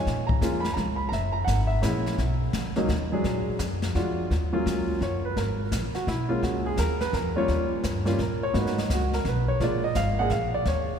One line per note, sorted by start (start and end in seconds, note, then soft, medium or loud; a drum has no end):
0.00 0.40 C#5 medium
0.00 0.26 G#5 medium
0.06 0.41 A#2 medium
0.06 brush sweep soft
0.06 kick soft
0.06 snare soft
0.27 0.64 A#5 medium
0.27 kick medium
0.41 0.76 F2 medium
0.41 0.62 G#3 medium
0.41 0.62 A#3 medium
0.41 0.62 C#4 soft
0.41 0.63 F4 medium
0.41 kick soft
0.41 snare soft
0.41 hi-hat pedal medium
0.60 0.74 B5 medium
0.60 snare soft
0.73 1.11 C#2 medium
0.73 0.96 A#5 medium
0.73 kick soft
0.73 snare soft
0.96 1.11 B5 medium
1.09 1.46 F#1 medium
1.09 1.31 A#5 medium
1.09 brush sweep soft
1.09 kick soft
1.09 snare soft
1.13 1.66 E5 medium
1.33 1.47 A#5 medium
1.44 1.82 G#1 medium
1.44 1.70 F#5 medium
1.44 kick soft
1.44 snare medium
1.44 hi-hat pedal soft
1.67 2.02 E5 medium
1.82 2.17 A#1 medium
1.82 2.18 G#3 medium
1.82 2.18 A#3 medium
1.82 2.18 C#4 medium
1.82 2.18 E4 medium
1.82 kick soft
1.82 snare medium
1.82 hi-hat pedal medium
2.06 snare soft
2.18 2.52 B1 medium
2.18 brush sweep soft
2.18 kick soft
2.18 snare soft
2.53 2.88 C#2 medium
2.53 kick soft
2.53 snare medium
2.53 hi-hat pedal medium
2.76 2.88 F#3 medium
2.76 2.88 A#3 medium
2.76 2.88 C#4 medium
2.76 2.88 D#4 medium
2.76 snare soft
2.88 3.23 D#2 medium
2.88 kick soft
2.88 snare soft
3.12 3.57 F#3 medium
3.12 3.57 G#3 medium
3.12 3.58 D4 medium
3.12 3.58 G#4 medium
3.24 3.59 A#2 medium
3.24 brush sweep soft
3.24 kick soft
3.24 snare soft
3.59 3.94 F#2 medium
3.59 kick soft
3.59 snare medium
3.59 hi-hat pedal medium
3.82 snare soft
3.95 4.29 F2 medium
3.95 4.31 G#3 soft
3.95 4.31 D4 medium
3.95 4.31 F4 medium
3.95 4.31 F#4 medium
3.95 kick soft
3.95 snare soft
4.30 4.65 D#2 medium
4.30 brush sweep soft
4.30 kick soft
4.30 snare soft
4.53 4.98 F#3 medium
4.53 4.98 A#3 medium
4.53 4.99 C#4 medium
4.53 4.99 F4 medium
4.66 5.00 C#2 medium
4.66 kick soft
4.66 snare soft
4.66 hi-hat pedal soft
5.01 5.35 F#1 medium
5.01 5.24 C#5 medium
5.01 kick soft
5.01 snare soft
5.25 5.37 B4 medium
5.36 5.71 G#1 medium
5.36 5.91 A#4 medium
5.36 brush sweep soft
5.36 kick soft
5.36 snare soft
5.72 5.93 A#1 medium
5.72 kick soft
5.72 snare soft
5.72 hi-hat pedal medium
5.95 6.07 F#4 medium
5.95 muted upright bass stroke soft
5.95 snare soft
6.07 6.42 B1 medium
6.07 6.30 E4 medium
6.07 kick soft
6.07 snare soft
6.29 6.75 G#3 medium
6.29 6.76 A#3 medium
6.29 6.76 C#4 medium
6.29 6.42 F4 medium
6.43 6.77 C#2 medium
6.43 6.65 F#4 medium
6.43 brush sweep soft
6.43 kick soft
6.43 snare soft
6.66 6.78 G#4 medium
6.77 7.12 D#2 medium
6.77 7.01 A#4 medium
6.77 kick soft
6.77 snare medium
6.77 hi-hat pedal medium
7.01 7.13 B4 medium
7.01 snare soft
7.13 7.48 F2 medium
7.13 7.36 A#4 medium
7.13 kick soft
7.13 snare soft
7.36 7.81 G3 medium
7.36 7.82 A#3 medium
7.36 7.82 C#4 medium
7.36 7.82 F4 medium
7.36 7.70 C#5 medium
7.48 7.70 D#2 medium
7.48 brush sweep soft
7.48 kick soft
7.48 snare soft
7.73 muted upright bass stroke soft
7.84 8.18 G2 medium
7.84 kick soft
7.84 snare medium
7.84 hi-hat pedal medium
8.05 8.17 G3 medium
8.05 8.17 A#3 medium
8.05 8.18 C#4 medium
8.05 8.18 F4 medium
8.05 snare soft
8.18 8.53 A#2 medium
8.18 8.43 A#4 medium
8.18 kick soft
8.18 snare soft
8.43 8.55 C#5 medium
8.53 8.89 G#2 medium
8.53 8.75 A#3 medium
8.53 8.75 B3 soft
8.53 8.75 D#4 medium
8.53 8.75 F#4 medium
8.53 8.78 B4 medium
8.53 brush sweep soft
8.53 kick soft
8.53 snare soft
8.67 snare soft
8.78 8.90 D#4 medium
8.78 snare soft
8.90 9.24 C#2 medium
8.90 9.14 F#4 medium
8.90 kick soft
8.90 snare medium
8.90 hi-hat pedal soft
9.13 9.26 A#4 medium
9.13 snare soft
9.25 9.59 B1 medium
9.25 9.49 B4 medium
9.25 kick soft
9.25 snare soft
9.48 9.60 C#5 medium
9.60 9.95 A#1 medium
9.60 9.81 G#3 medium
9.60 9.81 A#3 medium
9.60 9.81 D4 medium
9.60 9.81 F4 medium
9.60 9.84 D5 medium
9.60 brush sweep soft
9.60 kick soft
9.60 snare soft
9.84 9.96 D#5 medium
9.95 10.30 G#1 medium
9.95 10.18 F5 medium
9.95 kick soft
9.95 snare medium
9.95 hi-hat pedal medium
10.19 10.30 G#3 medium
10.19 10.30 A#3 medium
10.19 10.31 D4 medium
10.19 10.31 G#4 medium
10.19 10.31 F#5 loud
10.30 10.65 A#1 medium
10.30 10.54 F5 medium
10.30 kick soft
10.30 snare soft
10.54 10.66 D5 medium
10.65 10.99 D#2 medium
10.65 10.99 C#5 medium
10.65 brush sweep soft
10.65 kick soft
10.65 snare soft